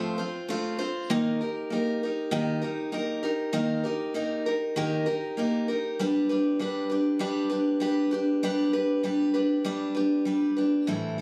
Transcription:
0.00 0.18 F3 medium
0.00 0.19 A3 medium
0.00 0.19 C4 loud
0.00 0.18 F4 medium
0.00 0.17 C5 medium
0.18 0.49 C4 soft
0.18 0.49 F4 medium
0.18 0.49 C5 medium
0.49 0.79 A3 medium
0.49 0.80 C4 medium
0.49 0.78 F4 medium
0.49 0.77 C5 medium
0.79 1.10 C4 soft
0.79 1.10 F4 soft
0.79 1.10 C5 medium
1.10 1.40 D#3 medium
1.10 1.41 A#3 medium
1.10 1.41 D#4 medium
1.10 1.41 G4 medium
1.10 1.40 A#4 medium
1.41 1.71 D#4 soft
1.41 1.71 G4 medium
1.41 1.71 A#4 medium
1.70 2.01 A#3 medium
1.70 2.02 D#4 medium
1.70 2.02 G4 medium
1.70 2.02 A#4 medium
2.03 2.31 D#4 soft
2.03 2.31 G4 soft
2.03 2.31 A#4 medium
2.31 2.62 D#3 medium
2.31 2.62 A#3 medium
2.31 2.63 D#4 medium
2.31 2.61 G4 medium
2.31 2.60 A#4 medium
2.62 2.91 D#4 soft
2.62 2.92 G4 medium
2.62 2.93 A#4 medium
2.92 3.23 A#3 medium
2.92 3.23 D#4 medium
2.92 3.22 G4 medium
2.92 3.22 A#4 medium
3.23 3.52 D#4 soft
3.23 3.52 G4 soft
3.23 3.53 A#4 medium
3.53 3.84 D#3 medium
3.53 3.84 A#3 medium
3.53 3.84 D#4 medium
3.53 3.84 G4 medium
3.53 3.82 A#4 medium
3.84 4.14 D#4 soft
3.84 4.15 G4 medium
3.84 4.15 A#4 medium
4.14 4.45 A#3 medium
4.14 4.46 D#4 medium
4.14 4.46 G4 medium
4.14 4.45 A#4 medium
4.46 4.76 D#4 soft
4.46 4.76 G4 soft
4.46 4.76 A#4 medium
4.76 5.07 D#3 medium
4.76 5.07 A#3 medium
4.76 5.07 D#4 medium
4.76 5.06 G4 loud
4.76 5.05 A#4 medium
5.06 5.37 D#4 medium
5.06 5.38 G4 medium
5.06 5.37 A#4 medium
5.37 5.68 A#3 medium
5.37 5.68 D#4 medium
5.37 5.68 G4 medium
5.37 5.67 A#4 medium
5.68 6.00 D#4 soft
5.68 5.99 G4 soft
5.68 5.99 A#4 medium
5.99 6.30 G3 medium
5.99 6.30 D4 medium
5.99 6.29 G4 medium
5.99 6.28 B4 loud
6.29 6.59 D4 soft
6.29 6.60 G4 medium
6.29 6.60 B4 medium
6.59 6.90 G3 medium
6.59 6.91 D4 medium
6.59 6.90 G4 medium
6.59 6.88 B4 medium
6.90 7.19 D4 soft
6.90 7.19 G4 medium
6.90 7.20 B4 medium
7.19 7.51 G3 medium
7.19 7.51 D4 medium
7.19 7.50 G4 medium
7.19 7.48 B4 loud
7.50 7.80 D4 soft
7.50 7.80 G4 medium
7.50 7.81 B4 medium
7.80 8.12 G3 medium
7.80 8.12 D4 medium
7.80 8.11 G4 medium
7.80 8.10 B4 medium
8.11 8.42 D4 medium
8.11 8.43 G4 medium
8.11 8.42 B4 medium
8.43 8.74 G3 medium
8.43 8.74 D4 medium
8.43 8.72 G4 medium
8.43 8.72 B4 loud
8.73 9.03 D4 soft
8.73 9.03 G4 soft
8.73 9.04 B4 medium
9.03 9.34 G3 medium
9.03 9.34 D4 medium
9.03 9.33 G4 medium
9.03 9.33 B4 medium
9.34 9.64 D4 soft
9.34 9.65 G4 medium
9.34 9.65 B4 soft
9.64 9.96 G3 medium
9.64 9.96 D4 medium
9.64 9.95 G4 medium
9.64 9.93 B4 medium
9.95 10.25 D4 soft
9.95 10.26 G4 medium
9.95 10.26 B4 medium
10.25 10.56 G3 medium
10.25 10.57 D4 medium
10.25 10.57 G4 medium
10.25 10.55 B4 medium
10.57 10.88 D4 soft
10.57 10.88 G4 soft
10.57 10.87 B4 medium
10.87 11.18 A2 medium
10.87 11.18 E3 medium
10.87 11.18 G3 medium
10.87 11.18 C4 medium
10.87 11.18 E4 medium
10.87 11.17 A4 medium
11.18 11.21 A4 medium

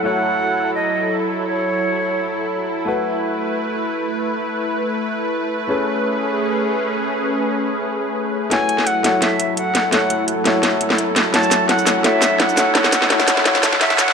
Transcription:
0.00 2.83 F#3 medium
0.00 2.84 A3 medium
0.00 5.65 E4 medium
0.00 2.84 E4 medium
0.00 2.83 A4 medium
0.04 2.85 F#4 medium
0.04 2.85 C#5 medium
0.04 0.71 F#5 loud
0.75 1.16 D#5 medium
1.45 2.65 C#5 medium
2.85 5.66 A3 medium
2.85 8.47 A3 medium
2.85 5.67 E4 medium
2.85 5.67 F#4 medium
2.85 8.47 B4 medium
2.85 5.68 B4 medium
5.68 8.48 A3 medium
5.68 8.49 C#4 medium
5.68 8.48 C#4 medium
5.68 8.49 G#4 medium
5.68 8.50 G#4 medium
5.68 8.50 B4 medium
8.50 14.12 F#3 medium
8.50 9.01 A3 medium
8.50 9.02 E4 medium
8.50 14.12 E4 medium
8.50 9.03 F#4 medium
8.50 14.12 A4 medium
8.50 9.03 C#5 medium
8.50 8.88 G#5 loud
8.50 snare soft
8.50 closed hi-hat medium
8.50 riser medium
8.69 closed hi-hat medium
8.78 snare soft
8.87 9.23 F#5 loud
8.87 closed hi-hat medium
9.03 9.90 A3 medium
9.03 9.90 E4 medium
9.03 9.91 F#4 medium
9.03 9.91 C#5 medium
9.03 cross-stick soft
9.03 snare soft
9.03 closed hi-hat medium
9.22 9.57 E5 medium
9.22 snare medium
9.22 closed hi-hat medium
9.40 closed hi-hat medium
9.57 9.90 F#5 medium
9.57 closed hi-hat medium
9.75 snare medium
9.75 closed hi-hat medium
9.91 10.42 A3 medium
9.91 10.43 E4 medium
9.91 10.44 F#4 medium
9.91 10.44 C#5 medium
9.91 10.25 F#5 medium
9.91 snare medium
9.91 closed hi-hat medium
10.10 closed hi-hat medium
10.28 closed hi-hat medium
10.44 11.31 A3 medium
10.44 11.32 E4 medium
10.44 11.32 F#4 medium
10.44 11.33 C#5 medium
10.44 snare medium
10.44 closed hi-hat medium
10.63 snare medium
10.63 closed hi-hat medium
10.81 closed hi-hat medium
10.90 snare medium
10.98 closed hi-hat medium
11.16 snare medium
11.16 closed hi-hat medium
11.32 11.84 A3 medium
11.32 11.84 E4 medium
11.32 11.85 F#4 medium
11.32 11.85 C#5 medium
11.32 11.67 A5 loud
11.32 snare medium
11.32 closed hi-hat medium
11.43 shaker soft
11.51 snare medium
11.51 closed hi-hat medium
11.51 shaker medium
11.69 11.98 F#5 loud
11.69 snare medium
11.69 closed hi-hat medium
11.79 shaker soft
11.85 12.01 A3 medium
11.85 12.02 E4 medium
11.85 12.03 F#4 medium
11.85 12.04 C#5 medium
11.85 snare medium
11.85 closed hi-hat medium
11.85 shaker medium
11.98 12.06 F#5 medium
12.03 12.54 A3 medium
12.03 12.55 E4 medium
12.03 12.56 F#4 medium
12.03 12.56 C#5 medium
12.03 12.41 E5 loud
12.03 snare medium
12.03 closed hi-hat medium
12.22 snare medium
12.22 closed hi-hat medium
12.22 shaker medium
12.40 12.74 F#5 loud
12.40 snare medium
12.40 closed hi-hat medium
12.49 shaker soft
12.56 12.72 A3 medium
12.56 12.73 E4 medium
12.56 12.74 F#4 medium
12.56 12.74 C#5 medium
12.56 snare medium
12.56 closed hi-hat medium
12.56 shaker medium
12.73 13.07 A3 medium
12.73 13.08 E4 medium
12.73 13.09 F#4 medium
12.73 13.10 C#5 medium
12.73 13.08 F#5 medium
12.73 snare medium
12.73 closed hi-hat medium
12.84 snare medium
12.84 shaker soft
12.93 snare medium
12.93 closed hi-hat medium
12.93 shaker medium
13.02 snare medium
13.09 13.42 A3 medium
13.09 13.43 E4 medium
13.09 13.44 F#4 medium
13.09 13.45 C#5 medium
13.09 snare medium
13.09 closed hi-hat medium
13.20 snare medium
13.20 shaker soft
13.28 snare loud
13.28 closed hi-hat medium
13.28 shaker medium
13.37 snare medium
13.44 13.60 A3 medium
13.44 13.61 E4 medium
13.44 13.62 F#4 medium
13.44 13.63 C#5 loud
13.44 snare loud
13.44 closed hi-hat medium
13.55 snare medium
13.55 shaker soft
13.61 13.78 A3 medium
13.61 13.79 E4 medium
13.61 13.80 F#4 medium
13.61 13.80 C#5 medium
13.61 snare loud
13.61 closed hi-hat medium
13.61 shaker medium
13.73 snare loud
13.79 13.95 A3 medium
13.79 13.96 E4 medium
13.79 13.97 F#4 medium
13.79 13.98 C#5 medium
13.79 14.00 E5 loud
13.79 snare loud
13.79 closed hi-hat medium
13.90 snare medium
13.90 shaker soft
13.97 14.13 A3 medium
13.97 14.13 E4 medium
13.97 14.13 F#4 medium
13.97 14.13 C#5 medium
13.97 14.13 F#5 loud
13.97 snare loud
13.97 closed hi-hat medium
13.97 shaker medium
14.08 snare loud

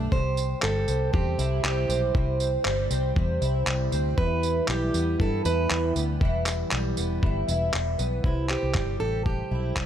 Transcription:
0.00 0.17 G2 medium
0.00 0.17 A3 medium
0.00 0.17 D4 medium
0.00 2.35 G4 medium
0.12 0.53 C2 medium
0.12 1.12 C3 medium
0.12 0.63 C5 loud
0.12 kick loud
0.37 tambourine medium
0.62 0.84 G1 loud
0.62 1.64 G3 medium
0.62 1.10 A4 medium
0.62 clap loud
0.88 1.09 C2 medium
0.88 1.88 C4 medium
0.88 tambourine medium
1.13 1.34 E2 medium
1.13 2.14 C3 medium
1.13 1.65 G4 medium
1.13 kick loud
1.39 1.59 C2 medium
1.39 3.41 E4 medium
1.39 tambourine medium
1.64 1.85 C2 loud
1.64 2.65 G3 medium
1.64 2.00 G4 medium
1.64 clap loud
1.89 2.10 B1 medium
1.89 2.89 C4 medium
1.89 tambourine medium
2.15 2.56 C2 medium
2.15 kick loud
2.40 tambourine medium
2.65 2.86 G1 medium
2.65 3.66 G3 medium
2.65 clap loud
2.90 3.12 C2 medium
2.90 3.91 C4 medium
2.90 tambourine medium
3.16 3.37 E2 medium
3.16 4.17 C3 medium
3.16 kick loud
3.42 3.62 C2 loud
3.42 5.45 E4 medium
3.42 tambourine medium
3.67 3.88 C2 loud
3.67 4.68 G3 medium
3.67 clap loud
3.92 4.13 D2 medium
3.92 4.23 C4 medium
3.92 tambourine medium
4.18 4.59 E2 loud
4.18 5.19 E3 medium
4.18 4.70 B4 loud
4.18 kick loud
4.43 tambourine medium
4.68 4.89 B1 loud
4.68 5.70 G3 medium
4.68 5.21 G4 medium
4.68 clap loud
4.94 5.15 E2 medium
4.94 5.95 B3 medium
4.94 tambourine medium
5.20 5.40 G2 medium
5.20 6.21 E3 medium
5.20 5.45 A4 medium
5.20 kick loud
5.45 5.66 E2 loud
5.45 7.47 E4 medium
5.45 5.92 B4 loud
5.45 tambourine medium
5.70 5.91 E2 loud
5.70 6.72 G3 medium
5.70 clap loud
5.96 6.16 D2 medium
5.96 6.96 B3 medium
5.96 tambourine medium
6.21 6.63 E1 medium
6.21 7.22 E3 medium
6.21 kick loud
6.46 clap loud
6.46 tambourine medium
6.71 6.93 B1 loud
6.71 7.73 G3 medium
6.71 clap loud
6.97 7.18 E1 medium
6.97 7.97 B3 medium
6.97 tambourine medium
7.23 7.44 G1 medium
7.23 8.23 E3 medium
7.23 kick loud
7.48 7.69 E1 medium
7.48 8.29 E4 medium
7.48 tambourine medium
7.73 7.94 E1 medium
7.73 8.29 G3 medium
7.73 clap loud
7.98 8.20 B1 medium
7.98 8.29 B3 medium
7.98 tambourine medium
8.24 8.55 C2 medium
8.24 9.25 C3 medium
8.24 8.50 E4 medium
8.24 kick loud
8.49 9.86 C4 soft
8.49 9.00 G4 medium
8.49 clap medium
8.63 8.73 C2 medium
8.74 8.96 G1 medium
8.74 9.75 G3 medium
8.74 kick loud
8.74 clap medium
9.00 9.42 A1 medium
9.00 9.86 G4 medium
9.00 9.26 A4 medium
9.26 9.86 C3 medium
9.26 9.73 G4 medium
9.26 kick medium
9.51 9.72 B1 loud
9.51 9.86 E4 medium
9.76 9.86 C2 medium
9.76 9.86 G3 medium
9.76 kick loud
9.76 clap loud

